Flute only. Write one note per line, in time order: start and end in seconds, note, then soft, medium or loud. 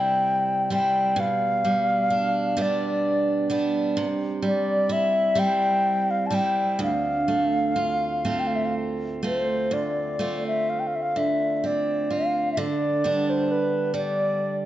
0.00 0.73 G5 medium
0.74 1.21 G5 medium
1.20 2.63 F5 loud
2.62 3.65 D5 medium
4.46 4.94 D5 medium
4.92 5.41 E5 medium
5.39 6.12 G5 loud
6.11 6.28 F5 medium
6.26 6.36 A5 medium
6.35 6.81 G5 medium
6.83 8.41 F5 medium
8.40 8.49 G5 medium
8.47 8.57 F5 medium
8.56 8.67 E5 medium
8.65 8.74 F5 medium
9.26 9.75 C5 medium
9.73 10.44 D5 medium
10.47 10.71 E5 medium
10.70 10.81 F5 medium
10.80 10.89 G5 soft
10.87 10.97 F5 medium
10.95 11.03 E5 soft
11.02 11.19 F5 medium
11.17 11.57 E5 medium
11.57 11.68 E5 soft
11.66 12.15 D5 medium
12.14 12.52 F5 medium
12.53 12.60 E5 medium
12.59 13.31 D5 medium
13.30 13.53 C5 medium
13.51 13.95 B4 medium
13.97 14.56 D5 medium